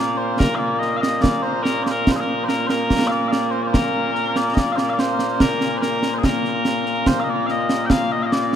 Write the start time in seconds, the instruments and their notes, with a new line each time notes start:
Already playing: bagpipes A#2 A#3 D5
0.17 bagpipes C5
0.39 bagpipes A#4, concert bass drum, snare
0.55 bagpipes D5 F5
0.79 bagpipes D#5, snare
0.96 bagpipes F5
1.01 bagpipes D#5, snare
1.22 bagpipes D5, concert bass drum, snare
1.42 bagpipes C5
1.63 bagpipes A#4, snare
1.83 bagpipes C5 D5, snare
1.91 bagpipes A#4
2.07 concert bass drum, snare
2.12 bagpipes C5
2.16 bagpipes G#4
2.20 bagpipes A#4
2.44 bagpipes C5
2.48 bagpipes A#4, snare
2.67 bagpipes A#4 C5, snare
2.90 concert bass drum, snare
3.07 bagpipes D5 F5
3.12 snare
3.28 bagpipes D5 F5
3.33 snare
3.51 bagpipes C5
3.62 bagpipes D5
3.67 bagpipes C5
3.74 bagpipes A#4, concert bass drum, snare
4.15 snare
4.36 bagpipes D5, snare
4.54 bagpipes D#5, concert bass drum, snare
4.58 bagpipes D5
4.72 bagpipes C5 F5
4.78 bagpipes D5, snare
4.89 bagpipes D5 F5
4.99 bagpipes C5, snare
5.19 snare
5.40 bagpipes A#4, concert bass drum, snare
5.61 snare
5.77 bagpipes C5
5.82 bagpipes A#4, snare
6.03 snare
6.14 bagpipes G#4 C5
6.24 bagpipes A#4, concert bass drum, snare
6.45 snare
6.65 snare
6.86 snare
7.06 bagpipes C5, concert bass drum, snare
7.20 bagpipes D#5 F5
7.30 bagpipes D5
7.46 bagpipes F5, snare
7.50 bagpipes D#5
7.69 snare
7.86 bagpipes G5
7.90 bagpipes F5, concert bass drum, snare
8.12 bagpipes D#5
8.22 bagpipes D#5 F5
8.32 bagpipes D5, snare